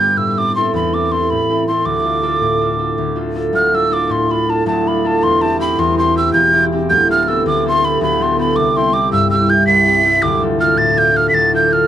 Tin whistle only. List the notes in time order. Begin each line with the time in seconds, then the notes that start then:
Already playing: G6
0.17 E6
0.38 D6
0.55 C6
0.75 B5
0.94 D6
1.12 C6
1.30 B5
1.67 C6
1.86 D6
3.55 F6
3.75 E6
3.93 D6
4.11 C6
4.31 B5
4.50 A5
4.67 A5
4.88 B5
5.07 A5
5.23 C6
5.42 A5
5.61 B5
5.79 C6
5.98 C6
6.17 E6
6.33 G6
6.90 G6
7.11 F6
7.23 F6
7.28 E6
7.47 D6
7.68 C6
7.85 B5
8.03 B5
8.22 C6
8.40 B5
8.56 D6
8.77 C6
8.93 D6
9.12 E6
9.31 E6
9.50 G6
9.67 B6
10.22 D6
10.61 F6
10.78 A6
10.98 G6
11.17 F6
11.29 B6
11.34 A6
11.55 G6
11.73 F6